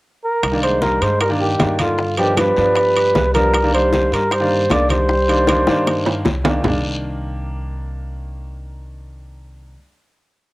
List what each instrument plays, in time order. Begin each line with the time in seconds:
0.24 flugelhorn A#4
0.43 upright bass C2, high bongo, high conga, high timbale, long guiro
0.52 grand piano D#3 A#3 D4
0.63 trombone G#3, flugelhorn C5, high conga, high timbale
0.82 trombone G3, flugelhorn A#4, high bongo, high conga, low timbale, short guiro
1.01 upright bass G2, trombone G#3, flugelhorn C5, high bongo, high conga, high timbale, short guiro
1.21 trombone G3, flugelhorn A#4, high bongo, high conga, high timbale, long guiro
1.29 grand piano D#3 A#3 D4
1.40 trombone D#3, flugelhorn G4, high bongo, high conga
1.59 upright bass G2, grand piano D#3 A#3 D4, high bongo, low bongo, high conga, high timbale, low timbale, short guiro
1.79 trombone D3, flugelhorn F4, high bongo, high conga, high timbale, short guiro
1.98 high bongo, high conga, long guiro
2.17 trombone D#3, grand piano F3 B3 D4, flugelhorn G4, high conga, high timbale
2.37 grand piano F3 B3 D4, trombone G3, flugelhorn B4, high bongo, high conga, high timbale, low timbale, short guiro
2.56 upright bass G2, grand piano F3 B3 D4, high bongo, high conga, short guiro
2.76 high bongo, high conga, high timbale, long guiro
2.96 high bongo, high conga, high timbale
3.15 upright bass C2, high bongo, low bongo, high conga, low timbale, short guiro
3.34 grand piano F3 B3 D4, trombone G3, flugelhorn A#4, high bongo, high conga, high timbale, short guiro
3.54 high bongo, high conga, high timbale, long guiro
3.63 grand piano D#3 A#3 D4
3.74 trombone G3, flugelhorn C5, high conga, high timbale
3.93 high bongo, high conga, low timbale, short guiro
4.12 upright bass G2, trombone G3, flugelhorn A#4, high bongo, high conga, high timbale, short guiro
4.31 trombone G3, flugelhorn C5, high bongo, high conga, high timbale, long guiro
4.40 grand piano D#3 A#3 D4
4.50 high bongo, high conga
4.70 upright bass C2, grand piano D#3 A#3 D4, trombone A#3, flugelhorn D5, high bongo, low bongo, high conga, high timbale, low timbale, short guiro
4.89 trombone G3, flugelhorn C5, high bongo, high conga, high timbale, short guiro
5.09 high bongo, high conga, long guiro
5.28 grand piano D#3 A#3 D4, high conga, high timbale
5.47 grand piano D#3 A#3 D4, high bongo, high conga, high timbale, low timbale, short guiro
5.67 upright bass G2, grand piano D#3 A#3 D4, high bongo, high conga, short guiro
5.87 low bongo, high conga, high timbale, long guiro
6.06 low bongo, high conga, high timbale
6.25 upright bass C2, low bongo, high conga, high timbale, short guiro
6.44 grand piano D#3 A#3 D4, low bongo, high conga, low timbale, short guiro
6.62 upright bass C2, grand piano D#3 A#3, low bongo, low conga, low timbale, long guiro
6.68 grand piano D4